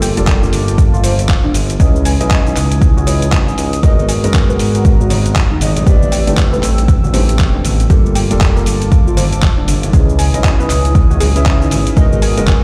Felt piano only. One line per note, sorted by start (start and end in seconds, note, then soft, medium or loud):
0.00 0.13 G3 medium
0.00 0.13 A#3 medium
0.00 0.14 F4 medium
0.00 0.14 A4 loud
0.17 1.77 G3 medium
0.17 1.77 A#3 medium
0.17 1.78 F4 medium
0.17 1.78 A4 loud
1.79 2.17 C#4 medium
1.79 2.17 E4 medium
1.79 2.17 B4 medium
1.79 2.17 D#5 medium
2.20 3.04 C#4 medium
2.20 3.04 E4 medium
2.20 3.05 B4 medium
2.20 3.05 D#5 medium
3.06 3.80 C#4 medium
3.06 3.81 E4 medium
3.06 3.81 B4 medium
3.06 3.81 D#5 medium
3.83 4.20 G#3 medium
3.83 4.20 B3 medium
3.83 4.20 F#4 medium
3.83 4.20 A#4 loud
4.23 5.84 G#3 loud
4.23 5.84 B3 medium
4.23 5.84 F#4 medium
4.23 5.85 A#4 loud
5.86 6.24 A3 medium
5.86 6.24 C4 medium
5.86 6.24 G4 medium
5.86 6.24 B4 medium
6.27 7.11 A3 medium
6.27 7.11 C4 medium
6.27 7.11 G4 medium
6.27 7.12 B4 medium
7.13 7.87 A3 medium
7.13 7.87 C4 medium
7.13 7.88 G4 medium
7.13 7.88 B4 medium
7.90 8.27 G3 medium
7.90 8.27 A#3 medium
7.90 8.27 F4 medium
7.90 8.27 A4 loud
8.30 9.91 G3 loud
8.30 9.91 A#3 medium
8.30 9.91 F4 medium
8.30 9.91 A4 loud
9.93 10.30 C#4 medium
9.93 10.30 E4 medium
9.93 10.31 B4 medium
9.93 10.31 D#5 medium
10.33 11.18 C#4 medium
10.33 11.18 E4 medium
10.33 11.18 B4 medium
10.33 11.18 D#5 medium
11.35 11.94 C#4 loud
11.35 11.94 E4 medium
11.35 11.94 B4 medium
11.35 11.95 E5 loud
11.96 12.34 G#3 medium
11.96 12.34 B3 medium
11.96 12.34 F#4 medium
11.96 12.34 A#4 loud
12.37 12.64 G#3 loud
12.37 12.64 B3 medium
12.37 12.64 F#4 medium
12.37 12.64 A#4 loud